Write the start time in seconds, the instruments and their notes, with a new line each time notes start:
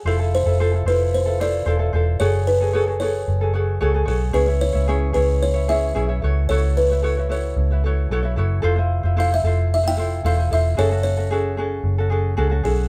0.05 fingered electric bass F1, ukulele E4 F4 A4 C5, kalimba A4
0.19 ukulele E4 F4 A4
0.35 kalimba C5
0.45 fingered electric bass F1, ukulele E4 F4 A4
0.60 ukulele E4 F4 A4 C5
0.74 ukulele E4 F4 A4
0.85 fingered electric bass F1, ukulele E4 F4 A4 C5, kalimba B4
1.14 kalimba C5
1.26 ukulele E4 F4 A4
1.40 ukulele E4 F4 A4 C5, kalimba D5
1.66 fingered electric bass E1, ukulele E4 F4 A4 C5
1.79 ukulele E4 F4 A4
1.93 fingered electric bass E1, ukulele E4 F4 A4 C5
2.20 fingered electric bass F#1, ukulele F#4 G#4 A4 C#5, kalimba C#5
2.47 kalimba B4
2.60 ukulele F#4 G#4 A4
2.73 ukulele F#4 G#4 A4 C#5
2.87 ukulele F#4 G#4 A4
3.00 ukulele F#4 G#4 A4 C#5, kalimba C#5
3.28 fingered electric bass F#1
3.41 ukulele F#4 G#4 A4
3.53 ukulele F#4 G#4 A4 C#5
3.81 fingered electric bass C#2, ukulele F#4 G#4 A4 C#5
3.94 ukulele F#4 G#4 A4
4.05 fingered electric bass B1, ukulele F#4 G#4 A4 C#5, kalimba G#4
4.33 fingered electric bass C#2, ukulele C#4 E4 G#4 C#5, kalimba B4
4.47 ukulele C#4 E4 C#5
4.61 kalimba C#5
4.73 fingered electric bass C#2, ukulele C#4 E4 C#5
4.88 ukulele C#4 E4 G#4 C#5
5.13 fingered electric bass C#2, ukulele C#4 E4 G#4 C#5, kalimba B4
5.43 kalimba C#5
5.54 ukulele C#4 E4 C#5
5.68 ukulele C#4 E4 G#4 C#5, kalimba E5
5.95 fingered electric bass B1, ukulele C#4 E4 G#4 C#5
6.09 ukulele C#4 E4 C#5
6.22 fingered electric bass C#2, ukulele E4 F#4 A4 C#5
6.49 fingered electric bass C#2, ukulele E4 F#4 A4 C#5, kalimba C#5
6.77 kalimba B4
6.90 ukulele E4 F#4 C#5
7.03 ukulele E4 F#4 A4 C#5
7.17 ukulele E4 F#4 C#5
7.29 ukulele E4 F#4 A4 C#5, kalimba C#5
7.56 fingered electric bass C#2
7.70 ukulele E4 F#4 C#5
7.84 ukulele E4 F#4 A4 C#5
8.10 fingered electric bass B1, ukulele E4 F#4 A4 C#5
8.23 ukulele E4 F#4 C#5
8.36 fingered electric bass F#1, ukulele E4 F#4 A4 C#5
8.62 fingered electric bass F1, ukulele E4 F4 A4 C5
8.76 ukulele E4 F4 C5
9.03 fingered electric bass F1, ukulele E4 F4 C5
9.17 ukulele E4 F4 A4 C5, kalimba F5
9.32 ukulele E4 F4, kalimba E5
9.43 fingered electric bass F1, ukulele E4 F4 A4 C5
9.74 kalimba E5
9.83 ukulele E4 F4 C5
9.88 kalimba G5
9.97 ukulele E4 F4 A4 C5
10.24 fingered electric bass E1, ukulele E4 F4 A4 C5, kalimba F5
10.37 ukulele E4 F4 C5
10.51 fingered electric bass E1, ukulele E4 F4 A4 C5, kalimba E5
10.77 fingered electric bass F#1, ukulele C#4 F#4 G#4 A4, kalimba C#5
10.92 ukulele C#4 F#4 A4
11.03 kalimba C#5
11.17 ukulele C#4 F#4 A4
11.31 ukulele C#4 F#4 G#4 A4
11.57 ukulele C#4 F#4 G#4 A4
11.83 fingered electric bass F#1
11.98 ukulele C#4 F#4 A4
12.10 ukulele C#4 F#4 G#4 A4
12.37 fingered electric bass C#2, ukulele C#4 F#4 G#4 A4
12.50 ukulele C#4 F#4 A4
12.63 fingered electric bass B1, ukulele C#4 F#4 G#4 A4, kalimba G#4